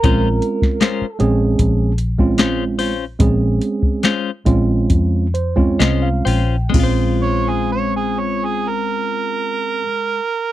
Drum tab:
CC |----------------|----------------|x---------------|
HH |x-x-x-x-x-x-x-o-|x-x-x-x-x-x-x-o-|----------------|
SD |---oo-------o---|----o-------o---|----------------|
BD |o--o----o--o----|o--o--o-o--o----|o---------------|